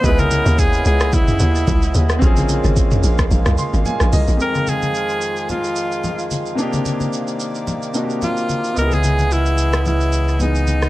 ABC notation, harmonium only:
X:1
M:4/4
L:1/8
Q:"Swing 16ths" 1/4=110
K:Fm
V:1 name="Harmonium"
[D,_C_Fe]8 | [D,A,B,F]8 | [E,F,A,F]8 | [C,E,B,=d]8 |
[D,_F,_Ce]8 |]